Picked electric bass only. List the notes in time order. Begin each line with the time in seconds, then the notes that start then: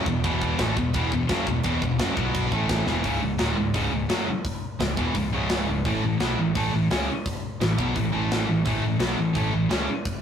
0.06 E1
0.25 E1
0.59 A1
0.77 E1
0.94 E1
1.12 E1
1.29 F#1
1.47 E1
1.65 E1
1.82 E1
1.99 F#1
2.17 B1
2.51 A1
2.87 E1
3.04 C#1
3.22 C#1
3.39 D#1
3.56 C#1
3.74 C#1
3.91 C#1
4.08 F#1
4.80 C#1
4.97 E1
5.15 C#1
5.32 C#1
5.67 C#1
5.85 A1
6.03 A1
6.19 B1
6.38 A1
6.55 A1
6.72 A1
6.90 C#2
7.61 A1
7.78 B1
7.96 A1
8.13 A1
8.48 A1
8.66 A1
8.81 A1
8.98 B1
9.17 A1
9.35 A1
9.52 A1
9.69 C#2